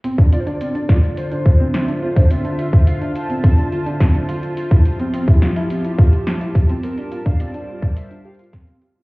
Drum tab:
HH |x--x--x--x--x--x--x--x--x--x--x-----x--x-----x--|x--x--x--x--x--x--x--x--x--x--x--x--x--x--x--x--|x--x--x--x--x--x--x--x--x--x--x--x--x--x--x--x--|x--x--x--x--x--x-----x--x--x--x-xxx-x--x--x-----|
SD |------------------o-----------------o-----------|------------------------------------o-----------|------------------o-----------------o-----------|------------------------------------o-----------|
BD |---o--------------o-----------o--------------o--|---------o--------------o-----------o-----------|---o-----------o--------------o-----------o-----|---------o-----------o--------------o-----------|